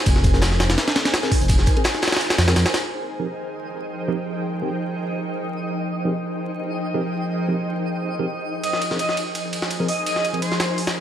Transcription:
0.06 F1, kick, closed hi-hat, ride
0.16 snare
0.24 kick, closed hi-hat, ride
0.34 C4 G#4 A#4, snare, closed hi-hat
0.42 snare, closed hi-hat, ride
0.51 snare, closed hi-hat
0.60 snare, closed hi-hat, ride
0.70 snare, ride
0.78 snare, closed hi-hat, ride
0.88 snare, ride
0.95 snare, closed hi-hat, ride
1.05 snare, ride
1.14 snare, closed hi-hat, ride
1.23 C4 G#4 A#4, snare, closed hi-hat
1.32 kick, closed hi-hat, open hi-hat
1.41 F1, closed hi-hat
1.48 kick, closed hi-hat, ride
1.59 F1, snare
1.66 kick, closed hi-hat, ride
1.77 C4 G#4 A#4, ride
1.84 snare, closed hi-hat, ride
1.94 snare, closed hi-hat
2.02 snare, closed hi-hat, ride
2.08 snare, ride
2.12 snare, closed hi-hat, ride
2.17 snare, ride
2.20 snare, closed hi-hat, ride
2.30 snare, closed hi-hat, ride
2.38 F2, snare, closed hi-hat, ride
2.48 C4 G#4 A#4, snare, ride
2.56 F2, snare, closed hi-hat, ride
2.66 snare, ride
2.74 snare, closed hi-hat, ride
2.92 F3 D#4 G#4 A#4 C5 D#5 G5
3.19 F3 C4 D#4 G4 G#4 A#4
4.08 F3 C4 D#4 G4 G#4 A#4
4.62 F3 C4 D#4 G4 G#4 A#4
5.77 F3 D#4 G#4 A#4 C5 G5
6.05 F3 C4 D#4 G4 G#4 A#4
6.94 F3 C4 D#4 G4 G#4 A#4
7.48 F3 C4 D#4 G4 G#4 A#4
8.19 F3 C4 D#4 G4 G#4 A#4
8.63 F3 D#4 G#4 A#4 C5 D#5 G#5, ride
8.73 snare
8.82 ride
8.91 F3 C4 G#4 A#4, snare
8.99 D#5, ride
9.09 snare
9.17 ride
9.35 ride
9.53 ride
9.62 snare
9.71 ride
9.80 F3 C4 G#4 A#4
9.88 D#5, open hi-hat
10.06 D#5, ride
10.16 snare
10.25 ride
10.33 F3 C4 G#4 A#4, ride
10.42 C5, ride
10.52 snare
10.60 snare, ride
10.78 open hi-hat
10.87 snare, ride

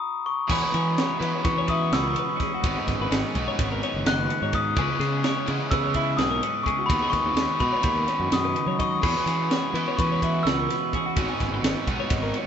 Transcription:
Already playing: F#4 A#5 D#6
0.26 C#6
0.48 E2 E3 G#3 B3 E4 G#4, kick, crash
0.52 C#4 F#4 B5
0.63 B4
0.74 E3 C#4 G#4, ride
0.98 F#4 C#5, snare, ride
1.19 E3 G#3 B3 E4 F#4 D#5, ride
1.35 C#5
1.44 E3 C#4 B4 C#6, kick, snare, ride
1.58 C#5
1.67 E4 F#4 D#6, kick, ride
1.90 C#2 B2 F#4 E6, snare, ride
1.95 B4
2.07 A#4
2.13 F#4, ride
2.19 B4
2.36 E3 C#4 F#4
2.40 G#4, kick, snare, ride
2.54 F#4
2.61 G#1 G#2 D#3 G#3 B3 C#4 F#4, kick, ride
2.66 B3 D#4
2.79 G#4
2.86 G#1 B3, kick, snare, ride
2.99 G#1 B4
3.10 G#1 C#4, snare, ride
3.25 G#4
3.34 B1 G#2 D#3 G#3 B3 D#4 F#4, kick, ride
3.48 C#5
3.59 G#1 B3, kick, ride
3.72 A#4
3.83 C#4 C#5, ride
3.94 F#1
4.06 F#1 D#3 F#4 D#5 F#6, snare, ride
4.20 B4
4.29 C#4, ride
4.42 G#2 C#5
4.52 G#2 B3 C#4 F#4 D#5 D#6, kick, ride
4.76 C#2 C#3 G#3 B3 C#4 E4 G#4 C#6, kick, ride
4.89 B4
4.99 C#3 B3 G#4, snare, ride
5.24 E4 C#5, snare, ride
5.46 C#3 E3 G#3 C#4 E4 F#4 D#5, ride
5.60 G#4 C#5
5.71 C#3 B3 B4 E6, kick, snare, ride
5.83 C#5
5.94 E4, kick, ride
6.17 B1 G#2 G#4 B4 D#6, snare, ride
6.31 A#4
6.42 C#4 B4, ride
6.54 E4
6.63 C#3 B3 E4 G#4 C#6, kick
6.68 ride
6.79 F#4
6.86 D#2 D#3 G#3 B3 C#4 D#4 B5, kick
6.90 F#4, ride
7.02 G#4
7.10 D#2 B3 C#6, kick, snare, ride
7.24 D#2 B4
7.35 D#2 C#4, snare, ride
7.50 G#4
7.60 B2 D#3 G#3 B3 D#4 F#4 B5, kick, ride
7.73 C#5
7.83 D#2 B3 B5, kick, ride
7.97 A#4
8.08 C#4 C#5, snare, ride
8.20 F#2
8.31 F#2 B2 D#5 D#6, snare, ride
8.45 B4
8.55 C#3, ride
8.67 F#3 C#5
8.79 D#3 D#5 C#6, kick, ride
9.02 E2 E3 G#3 B3 C#4 E4 F#4 G#4 B5, kick, crash
9.16 B4
9.26 E3 C#4 G#4, snare, ride
9.51 F#4 C#5, snare, ride
9.74 E3 G#3 B3 E4 F#4 D#5, ride
9.88 C#5
9.96 E3 B4 C#6, kick, ride
10.01 C#4
10.12 C#5
10.22 E4 F#4, kick, ride
10.43 C#2 B2 F#4 E6, snare, ride
10.48 B4
10.60 A#4
10.69 F#4 B4, snare, ride
10.93 E3 C#4 F#4 G#4, kick, ride
11.06 F#4
11.15 G#1 G#2 D#3 G#3 B3 C#4 D#4 F#4, kick, ride
11.29 G#4
11.40 G#1 B3, kick, snare, ride
11.52 G#1 B4
11.62 G#1 C#4, snare, ride
11.76 G#4
11.86 B1 G#2 D#3 G#3 B3 D#4 F#4, kick, ride
12.00 C#5
12.10 G#1 B3, kick, ride
12.23 A#4
12.34 C#4 C#5, ride

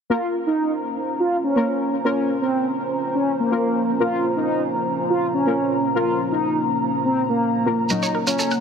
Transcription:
0.10 A#3 C#4 F4 A#4 C5
0.24 A#5
0.36 C5
0.46 D#4
1.20 F4
1.44 C#4
1.56 A#3 F4 A#4
2.05 A#3 C#4 F4 A#4
2.42 C4
3.15 C#4
3.39 A#3
3.51 A#3 F4 A#4
4.00 A#3 F4 A#4
4.37 D#4
5.10 F4
5.34 C#4
5.46 A#3 F4 A#4
5.95 A#3 F4 A#4
6.32 D#4
7.05 C4
7.29 A#3
7.66 A#3 F4 A#4
7.90 A#2 F#3 A#3 C#4 D#4 F#4 A#4 C#5, shekere
8.03 C#5, shekere
8.15 A#4
8.27 C#4 F4, shekere
8.36 F#4 A4, shekere
8.51 F#5, shekere

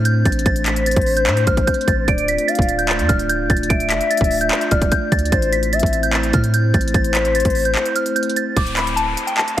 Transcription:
Already playing: A2 A3 C4 D4 C5
0.05 G6, closed hi-hat
0.25 A1 A6, kick, closed hi-hat
0.32 closed hi-hat
0.39 closed hi-hat
0.46 A1 C5 A6, kick, closed hi-hat
0.56 closed hi-hat
0.66 B6, clap, closed hi-hat
0.76 closed hi-hat
0.86 A6, closed hi-hat
0.91 closed hi-hat
0.96 A1, kick, closed hi-hat
1.02 closed hi-hat
1.06 open hi-hat
1.17 G6, closed hi-hat
1.27 A2, clap
1.37 closed hi-hat
1.47 A1 F6, kick, closed hi-hat
1.57 kick, closed hi-hat
1.67 G6, kick, closed hi-hat
1.74 closed hi-hat
1.81 closed hi-hat
1.88 A1 A6, kick, closed hi-hat
2.08 D1 A3 F4 D5 D7, kick, closed hi-hat
2.18 closed hi-hat
2.28 B6, closed hi-hat
2.38 closed hi-hat
2.48 F5 A6, closed hi-hat
2.55 D1, kick, closed hi-hat
2.62 closed hi-hat
2.69 closed hi-hat
2.78 G6, closed hi-hat
2.89 A6, clap
2.99 F2, closed hi-hat
3.09 D1 F6, kick, closed hi-hat
3.19 closed hi-hat
3.29 G6, closed hi-hat
3.50 D1 A6, kick, closed hi-hat
3.57 closed hi-hat
3.63 closed hi-hat
3.70 D1 E5 D7, kick, closed hi-hat
3.80 closed hi-hat
3.90 F1 B6, clap, closed hi-hat
4.01 closed hi-hat
4.11 A6, closed hi-hat
4.17 D1, kick, closed hi-hat
4.24 closed hi-hat
4.31 open hi-hat
4.41 G6, closed hi-hat
4.51 clap
4.61 closed hi-hat
4.71 D1 D5 F6, kick, closed hi-hat
4.82 kick, closed hi-hat
4.92 G6, kick, closed hi-hat
5.12 D2 A6, kick, closed hi-hat
5.19 closed hi-hat
5.25 closed hi-hat
5.32 A1 C4 E4 C5 A6, kick, closed hi-hat
5.42 closed hi-hat
5.53 B6, closed hi-hat
5.63 closed hi-hat
5.73 E5 A6, closed hi-hat
5.79 A1, kick, closed hi-hat
5.86 closed hi-hat
5.93 closed hi-hat
6.03 G6, closed hi-hat
6.13 A6, clap
6.23 closed hi-hat
6.33 A2 F6, kick, closed hi-hat
6.44 closed hi-hat
6.54 G6, closed hi-hat
6.74 A1 A6, kick, closed hi-hat
6.81 closed hi-hat
6.88 closed hi-hat
6.94 A1 C5 A6, kick, closed hi-hat
7.04 closed hi-hat
7.15 B6, clap, closed hi-hat
7.25 closed hi-hat
7.35 A6, closed hi-hat
7.40 closed hi-hat
7.45 A1, kick, closed hi-hat
7.50 closed hi-hat
7.55 open hi-hat
7.65 G6, closed hi-hat
7.75 clap
7.86 closed hi-hat
7.96 F6, closed hi-hat
8.06 closed hi-hat
8.16 G6, closed hi-hat
8.23 closed hi-hat
8.30 closed hi-hat
8.36 A6, closed hi-hat
8.57 D1 D6, kick, closed hi-hat, downlifter
8.67 closed hi-hat
8.77 B5, clap, closed hi-hat
8.87 closed hi-hat
8.96 A5, closed hi-hat
9.17 closed hi-hat
9.27 G5, closed hi-hat
9.37 A5, clap
9.48 closed hi-hat

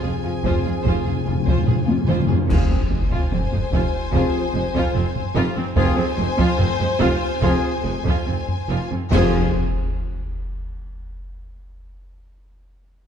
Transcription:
Already playing: F3 C4 G#4 G#5
0.03 F1 F2 F4 G#4
0.13 F2
0.20 F2 F4
0.25 F2 F4
0.35 F2
0.44 F1 F2 F4 C5, taiko
0.51 F2
0.58 F2
0.64 F2 F4 G#4
0.74 F2
0.81 F2 C5
0.85 F1 F2 F4, taiko
0.89 F2
0.97 F2
1.04 F2 F4 G#4
1.11 F2
1.19 F2
1.25 F1 F2 F4
1.34 F2
1.42 F2 C5
1.46 F2 F4, taiko
1.58 F2
1.65 F1 F2 G#4, taiko low-mid
1.70 F2 F4
1.81 F2 F4
1.87 F2 F4, taiko high
1.96 F2
2.04 F2 C5
2.08 F1 F2 F4, taiko mid
2.19 F2
2.27 F2 G#4, taiko low
2.31 F2 F4
2.41 F2
2.47 F1 F2 F3 C4 F4 G#4 C5 G#5, concert bass drum, taiko, crash
2.51 sub drop
2.70 F2 C4
2.91 F1 F2 G#3
3.10 F2 F4, taiko
3.31 F1 F2 C4, taiko low
3.52 F2 G#3, taiko low
3.71 F1 F2 F4, taiko
4.12 F1 F2 F3 C4 F4 G#4, taiko
4.54 F1 F2 G#3
4.75 F2 F4, taiko
4.95 F1 F2 C4
5.16 taiko low
5.35 F1 F2 F4
5.56 F2 C4, taiko low
5.76 F1 F2 F3 C4 F4 G#4 C5 G#5, taiko
5.97 F2 C4
6.18 F1 F2 G#3
6.38 F2 F4, taiko
6.58 F1 F2 C4, taiko low
6.79 F2 G#3, taiko low
7.00 F1 F2 F4, taiko
7.42 F1 F2 F3 C4 F4 G#4, taiko
7.84 F1 F2 G#3
8.05 F2 F4, taiko
8.26 F1 F2 C4
8.48 taiko low
8.68 F1 F2 F4
8.90 F2 C4, taiko low
9.11 F1 F2 F3 C4 F4 G#4 C5 G#5, concert bass drum, taiko low, crash, impact

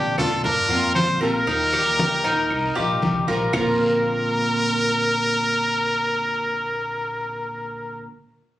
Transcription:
Already playing: D3 A#3 C4 D4 F4 G4
0.05 A#1
0.18 F4 A4, high conga, low conga, short guiro, claves
0.43 G1 D4 F4 A#4, muted steel-string acoustic guitar stroke, high conga, low conga, long guiro
0.69 F2 A#3 C4 F4, high conga
0.95 D3 A#3 C4 F4 C5, high conga, short guiro, claves
1.08 A#1
1.21 A#3 C4 F4 G4 A#4, high conga, short guiro
1.46 D#2 D#3 G3 D#4 F4, high conga, long guiro
1.73 G4, high conga, claves
1.86 D#2
1.99 high conga, short guiro
2.12 D#2
2.24 D#4, high conga, short guiro
2.50 C2, muted steel-string acoustic guitar stroke, high conga, long guiro, claves
2.75 A#1 G3 D#4 F4 G4, high conga
3.02 C2 D#3 G3 D#4 F4, high conga, short guiro
3.27 A#1 G3 D#4 F4 A#4, high conga, short guiro
3.53 A#1 A#2 D3 A#3 C4 F4 A#4, low conga, long guiro, claves

